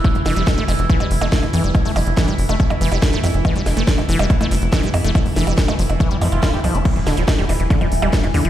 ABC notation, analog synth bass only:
X:1
M:4/4
L:1/16
Q:1/4=141
K:Flyd
V:1 name="Analog synth bass" clef=bass
z F,,, F,,, F,,, z F,,, F,,, F,,, z F,,, F,,, F,,, z F,,, F,, F,,, | z F,,, F,,, F,,, z F,,, F,,, F,,, z F,,, F,,, F,,, z F,,, F,, F,,, | z F,,, F,,, F,,, z F,,, F,,, F,,, z F,,, F,,, F,,, z F,,, F,, F,,, | z F,,, F,,, F,,, z F,,, F,,, F,,, z F,,, F,, F,,, z F,,, C,, F,,, |
z E,,, E,,, E,,, z E,,, E,,, E,,, z E,,, E,,, E,,, z E,,, E,, E,,, |]